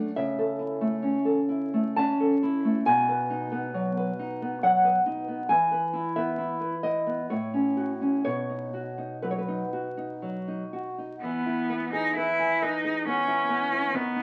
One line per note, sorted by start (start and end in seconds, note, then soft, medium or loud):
0.00 0.12 F#2 medium
0.00 0.16 A3 medium
0.16 2.83 C#3 medium
0.16 1.94 E5 loud
0.38 0.72 A4 medium
0.59 0.94 E4 medium
0.81 1.16 A3 medium
1.02 1.39 C#4 medium
1.25 1.64 A4 medium
1.49 1.88 E4 medium
1.74 2.12 A3 medium
1.96 2.34 C#4 medium
1.96 2.82 A5 loud
2.20 2.56 A4 medium
2.43 2.78 E4 medium
2.65 2.86 A3 medium
2.86 5.45 B2 medium
2.86 4.59 G#5 loud
3.09 3.43 B4 medium
3.30 3.66 D#4 medium
3.52 3.88 B3 medium
3.74 4.10 F#3 medium
3.97 4.33 B4 medium
4.19 4.54 D#4 medium
4.42 4.76 B3 medium
4.63 4.97 F#3 medium
4.63 5.46 F#5 medium
4.84 5.19 B4 medium
5.06 5.41 D#4 medium
5.28 5.50 B3 medium
5.49 7.25 E3 medium
5.49 6.13 G#5 loud
5.71 6.07 B4 medium
5.93 6.29 E4 medium
6.16 6.52 B3 medium
6.16 6.80 E5 medium
6.38 6.74 E4 medium
6.61 6.97 B4 medium
6.83 7.20 E4 medium
6.83 7.27 D#5 medium
7.07 7.29 B3 medium
7.30 8.23 A2 medium
7.30 8.22 C#5 medium
7.54 7.91 C#4 medium
7.77 8.15 F#4 medium
8.01 8.25 C#4 soft
8.24 11.18 B2 medium
8.24 9.19 C#5 medium
8.49 8.89 D#4 soft
8.73 9.13 F#4 medium
8.98 9.37 D#4 medium
9.22 9.62 F#3 medium
9.22 9.30 B4 medium
9.31 9.38 C#5 medium
9.38 10.68 B4 medium
9.48 9.87 D#4 medium
9.73 10.12 F#4 medium
9.97 10.37 D#4 medium
10.22 10.62 F#3 soft
10.48 10.88 D#4 medium
10.73 11.13 F#4 medium
10.98 11.22 D#4 soft
11.21 13.91 E3 medium
11.21 11.89 B3 medium
11.46 11.84 E4 medium
11.70 12.07 B3 medium
11.93 12.16 D#4 medium
11.93 12.30 G#4 medium
12.16 12.64 E4 medium
12.16 12.53 B4 medium
12.39 12.76 G#5 medium
12.62 13.07 D#4 medium
12.62 12.98 B4 medium
12.84 13.20 G#4 medium
13.06 13.42 B3 medium
13.06 13.96 C#4 medium
13.28 13.63 E4 medium
13.49 13.85 B3 soft
13.72 13.94 E4 medium
13.94 14.23 D#3 medium
13.94 14.23 B3 medium
14.16 14.23 D#4 soft